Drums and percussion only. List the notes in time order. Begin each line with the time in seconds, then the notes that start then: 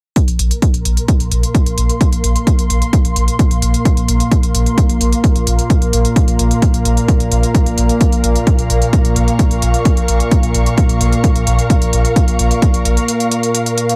0.16 kick, closed hi-hat
0.28 closed hi-hat
0.39 closed hi-hat
0.51 closed hi-hat
0.62 kick, closed hi-hat
0.74 closed hi-hat
0.85 closed hi-hat
0.97 closed hi-hat
1.08 kick, closed hi-hat
1.20 closed hi-hat
1.32 closed hi-hat
1.43 closed hi-hat
1.55 kick, closed hi-hat
1.66 closed hi-hat
1.78 closed hi-hat
1.89 closed hi-hat
2.01 kick, closed hi-hat
2.12 closed hi-hat
2.24 closed hi-hat
2.36 closed hi-hat
2.47 kick, closed hi-hat
2.59 closed hi-hat
2.70 closed hi-hat
2.82 closed hi-hat
2.93 kick, closed hi-hat
3.05 closed hi-hat
3.16 closed hi-hat
3.28 closed hi-hat
3.39 kick, closed hi-hat
3.51 closed hi-hat
3.62 closed hi-hat
3.74 closed hi-hat
3.85 kick, closed hi-hat
3.97 closed hi-hat
4.08 closed hi-hat
4.20 closed hi-hat
4.31 kick, closed hi-hat
4.43 closed hi-hat
4.55 closed hi-hat
4.66 closed hi-hat
4.78 kick, closed hi-hat
4.89 closed hi-hat
5.01 closed hi-hat
5.13 closed hi-hat
5.24 kick, closed hi-hat
5.36 closed hi-hat
5.47 closed hi-hat
5.59 closed hi-hat
5.70 kick, closed hi-hat
5.82 closed hi-hat
5.93 closed hi-hat
6.05 closed hi-hat
6.16 kick, closed hi-hat
6.28 closed hi-hat
6.39 closed hi-hat
6.51 closed hi-hat
6.62 kick, closed hi-hat
6.74 closed hi-hat
6.85 closed hi-hat
6.97 closed hi-hat
7.08 kick, closed hi-hat
7.20 closed hi-hat
7.32 closed hi-hat
7.43 closed hi-hat
7.55 kick, closed hi-hat
7.66 closed hi-hat
7.78 closed hi-hat
7.89 closed hi-hat
8.01 kick, closed hi-hat
8.12 closed hi-hat
8.24 closed hi-hat
8.36 closed hi-hat
8.47 kick, closed hi-hat
8.59 closed hi-hat
8.70 closed hi-hat
8.82 closed hi-hat
8.93 kick, closed hi-hat
9.05 closed hi-hat
9.16 closed hi-hat
9.28 closed hi-hat
9.39 kick, closed hi-hat
9.51 closed hi-hat
9.62 closed hi-hat
9.74 closed hi-hat
9.85 kick, closed hi-hat
9.97 closed hi-hat
10.08 closed hi-hat
10.20 closed hi-hat
10.31 kick, closed hi-hat
10.43 closed hi-hat
10.54 closed hi-hat
10.66 closed hi-hat
10.78 kick, closed hi-hat
10.89 closed hi-hat
11.01 closed hi-hat
11.12 closed hi-hat
11.24 kick, closed hi-hat
11.36 closed hi-hat
11.47 closed hi-hat
11.59 closed hi-hat
11.70 kick, closed hi-hat
11.82 closed hi-hat
11.93 closed hi-hat
12.05 closed hi-hat
12.16 kick, closed hi-hat
12.28 closed hi-hat
12.39 closed hi-hat
12.51 closed hi-hat
12.62 kick, closed hi-hat
12.74 closed hi-hat
12.85 closed hi-hat
12.97 closed hi-hat
13.08 closed hi-hat
13.20 closed hi-hat
13.31 closed hi-hat
13.43 closed hi-hat
13.55 closed hi-hat
13.66 closed hi-hat
13.78 closed hi-hat
13.89 closed hi-hat